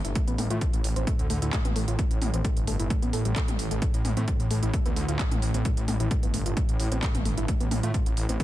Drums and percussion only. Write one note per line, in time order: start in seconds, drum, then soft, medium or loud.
0.05 closed hi-hat medium
0.15 kick loud
0.15 closed hi-hat medium
0.28 closed hi-hat medium
0.38 open hi-hat loud
0.38 mid tom medium
0.50 closed hi-hat medium
0.61 kick loud
0.61 closed hi-hat medium
0.73 closed hi-hat medium
0.84 open hi-hat loud
0.96 closed hi-hat medium
1.07 kick loud
1.07 closed hi-hat medium
1.19 closed hi-hat medium
1.30 open hi-hat loud
1.42 closed hi-hat medium
1.53 kick loud
1.53 clap loud
1.53 closed hi-hat medium
1.65 closed hi-hat medium
1.65 mid tom medium
1.76 open hi-hat loud
1.88 closed hi-hat medium
1.99 kick loud
1.99 closed hi-hat medium
2.11 closed hi-hat medium
2.22 open hi-hat loud
2.22 mid tom loud
2.34 closed hi-hat medium
2.45 kick loud
2.45 closed hi-hat medium
2.57 closed hi-hat medium
2.67 open hi-hat loud
2.80 closed hi-hat soft
2.90 kick loud
2.90 closed hi-hat medium
3.02 closed hi-hat medium
3.13 open hi-hat loud
3.25 closed hi-hat medium
3.36 kick loud
3.36 clap loud
3.36 closed hi-hat medium
3.48 closed hi-hat medium
3.48 mid tom medium
3.59 open hi-hat loud
3.71 closed hi-hat medium
3.82 kick loud
3.82 closed hi-hat medium
3.94 closed hi-hat medium
4.05 open hi-hat loud
4.05 mid tom loud
4.17 closed hi-hat medium
4.28 kick loud
4.28 closed hi-hat medium
4.40 closed hi-hat medium
4.51 open hi-hat loud
4.63 closed hi-hat medium
4.74 kick loud
4.74 closed hi-hat medium
4.86 closed hi-hat soft
4.96 open hi-hat loud
5.08 closed hi-hat soft
5.19 kick loud
5.19 clap loud
5.19 closed hi-hat medium
5.31 closed hi-hat medium
5.31 mid tom loud
5.42 open hi-hat loud
5.54 closed hi-hat soft
5.65 kick loud
5.65 closed hi-hat medium
5.77 closed hi-hat medium
5.88 open hi-hat loud
5.88 mid tom loud
6.00 closed hi-hat medium
6.11 kick loud
6.11 closed hi-hat medium
6.23 closed hi-hat medium
6.34 open hi-hat loud
6.46 closed hi-hat soft
6.57 kick loud
6.57 closed hi-hat medium
6.69 closed hi-hat soft
6.80 open hi-hat loud
6.92 closed hi-hat medium
7.03 kick loud
7.03 clap loud
7.03 closed hi-hat medium
7.15 closed hi-hat medium
7.15 mid tom loud
7.25 open hi-hat loud
7.38 closed hi-hat medium
7.48 kick loud
7.48 closed hi-hat medium
7.60 closed hi-hat medium
7.71 open hi-hat loud
7.71 mid tom loud
7.83 closed hi-hat medium
7.94 kick loud
7.94 closed hi-hat medium
8.06 closed hi-hat medium
8.17 open hi-hat loud
8.29 closed hi-hat medium
8.40 kick loud
8.40 closed hi-hat medium